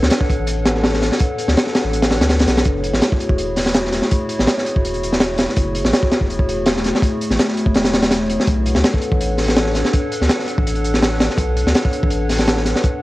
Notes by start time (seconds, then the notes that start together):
0.02 D2, snare
0.10 snare, closed hi-hat
0.21 kick
0.30 kick, closed hi-hat
0.39 A1 D4 A4 B4 C#5 F#5
0.47 closed hi-hat
0.66 snare, closed hi-hat
0.75 snare
0.84 snare, closed hi-hat
0.94 snare
1.02 snare, closed hi-hat
1.12 snare
1.19 kick, closed hi-hat
1.38 closed hi-hat
1.48 D2, snare
1.57 snare, closed hi-hat
1.67 snare
1.75 snare, closed hi-hat
1.84 A1
1.93 closed hi-hat
2.02 snare, closed hi-hat
2.11 snare, closed hi-hat
2.20 D2, snare, closed hi-hat
2.29 snare, closed hi-hat
2.39 snare, closed hi-hat
2.47 B1, snare, closed hi-hat
2.57 snare, closed hi-hat
2.65 F#1, kick, closed hi-hat
2.84 closed hi-hat
2.94 A1, snare
3.02 snare, closed hi-hat
3.12 kick
3.20 closed hi-hat
3.29 E1 A3 E4 F#4 G#4 C#5, kick
3.38 closed hi-hat
3.56 snare, open hi-hat
3.66 snare
3.74 snare, closed hi-hat
3.85 snare
3.92 snare, closed hi-hat
4.02 snare
4.11 kick, closed hi-hat
4.29 closed hi-hat
4.39 A1, snare
4.47 snare, closed hi-hat
4.58 snare
4.66 closed hi-hat
4.75 E1 A3 E4 F#4 G#4 C#5, kick
4.85 closed hi-hat
4.94 closed hi-hat
5.03 closed hi-hat
5.12 snare
5.20 snare, closed hi-hat
5.38 snare, closed hi-hat
5.49 snare
5.56 F#1, kick, closed hi-hat
5.75 closed hi-hat
5.84 A1, snare
5.93 snare, closed hi-hat
6.03 kick
6.11 snare, closed hi-hat
6.21 E1 A3 E4 F#4 G#4 C#5, kick
6.30 closed hi-hat
6.39 kick
6.49 closed hi-hat
6.66 snare, closed hi-hat
6.76 snare
6.84 snare, closed hi-hat
6.95 snare
7.02 kick, closed hi-hat
7.21 closed hi-hat
7.30 A1, snare
7.39 snare, closed hi-hat
7.48 snare
7.57 closed hi-hat
7.66 E1, kick
7.74 snare, closed hi-hat
7.84 snare, closed hi-hat
7.93 snare, closed hi-hat
8.03 snare, closed hi-hat
8.11 snare, closed hi-hat
8.30 closed hi-hat
8.40 snare
8.47 B1, kick, closed hi-hat
8.66 closed hi-hat
8.75 D2, snare
8.84 snare, closed hi-hat
8.94 kick
9.02 closed hi-hat
9.12 A1 D4 A4 B4 C#5 F#5, kick
9.21 closed hi-hat
9.37 snare, open hi-hat
9.48 snare
9.56 snare, closed hi-hat
9.66 snare
9.75 snare, closed hi-hat
9.85 snare
9.93 kick, closed hi-hat
10.12 closed hi-hat
10.21 D2, snare
10.29 snare, closed hi-hat
10.39 snare
10.47 closed hi-hat
10.57 A1 D4 A4 B4 C#5 F#5, kick
10.67 closed hi-hat
10.75 closed hi-hat
10.84 closed hi-hat
10.94 snare
11.02 snare, closed hi-hat
11.20 snare, closed hi-hat
11.30 snare
11.38 B1, kick, closed hi-hat
11.57 closed hi-hat
11.66 D2, snare
11.75 snare, closed hi-hat
11.85 kick
11.93 closed hi-hat
12.03 A1 D4 A4 B4 C#5 F#5, kick
12.10 closed hi-hat
12.29 snare, open hi-hat
12.39 snare
12.48 snare, closed hi-hat
12.57 snare
12.65 snare, closed hi-hat
12.76 snare
12.84 kick, closed hi-hat